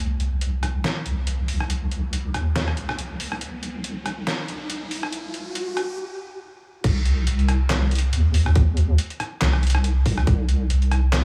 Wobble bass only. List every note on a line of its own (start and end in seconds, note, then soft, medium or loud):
0.00 0.83 C2 loud
1.05 1.47 C2 medium
1.48 2.33 C2 medium
2.34 2.76 D#2 medium
2.77 3.18 C2 loud
3.20 3.40 C2 medium
3.41 4.26 C2 loud
4.48 4.90 C2 medium
4.91 5.76 C2 loud
5.77 5.98 C2 loud
6.84 7.26 C2 loud
7.27 8.11 C2 loud
8.13 8.97 D#2 loud
9.41 10.04 C2 loud
10.06 10.26 C2 loud
10.27 10.68 C2 loud
10.70 11.24 C2 loud